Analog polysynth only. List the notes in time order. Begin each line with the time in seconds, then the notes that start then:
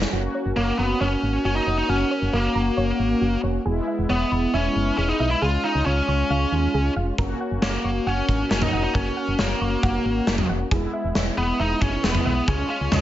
0.13 A#3 C#4 F#4
3.66 G#3 B3 E4
5.42 G#3 C#4 F4
7.18 A#3 C#4 F#4
10.72 G#3 B3 E4
12.48 G#3 C#4 F4